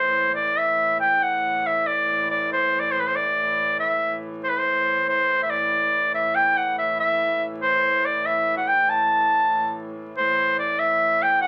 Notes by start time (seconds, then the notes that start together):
Already playing: A2 E3 C5
0.35 D5
0.58 E5
1.00 G5
1.23 F#5
1.66 E5
1.87 D5
2.30 D5
2.52 C5
2.80 D5
2.92 C5
3.00 B4
3.08 C5
3.16 D5
3.80 E5
4.44 C5
4.49 B4
4.59 C5
5.07 A2 E3 C5
5.43 E5
5.50 D5
6.15 E5
6.35 G5
6.57 F#5
6.79 E5
7.00 E5
7.62 C5
8.06 D5
8.26 E5
8.57 F#5
8.68 G5
8.89 A5
10.17 A2 E3 C5
10.59 D5
10.79 E5
11.23 G5
11.41 F#5